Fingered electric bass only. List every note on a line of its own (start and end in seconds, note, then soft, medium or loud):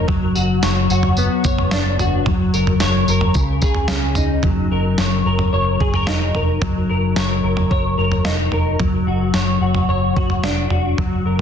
0.08 0.32 F#1 loud
0.36 0.60 F#1 medium
0.63 0.87 F#1 loud
0.91 1.26 F#1 loud
1.45 1.69 F#1 loud
1.73 1.96 F#1 loud
2.00 2.24 F#1 medium
2.26 2.50 F#1 loud
2.54 2.78 F#1 loud
2.81 3.05 F#1 loud
3.08 3.32 F#1 loud
3.35 3.59 C#2 loud
3.62 3.86 C#2 loud
3.90 4.14 C#2 loud
4.17 4.41 C#2 loud
4.44 4.68 F#1 medium
4.71 4.95 F#1 medium
4.98 5.23 F#1 medium
5.26 5.50 F#1 medium
5.53 5.77 F#1 medium
5.81 6.05 F#1 medium
6.08 6.32 F1 medium
6.35 6.59 F1 medium
6.89 7.14 F#1 medium
7.16 7.41 F#1 medium
7.44 7.68 F#1 medium
7.71 7.95 F#1 medium
7.98 8.23 F#1 medium
8.25 8.50 F1 medium
8.52 8.77 F1 medium
8.80 9.04 F#1 medium
9.07 9.31 F#1 medium
9.34 9.59 F#1 medium
9.61 9.86 F#1 medium
9.88 10.13 F#1 loud
10.17 10.41 F#1 medium
10.43 10.68 F1 medium
10.71 10.95 F1 medium
11.25 11.41 F#1 medium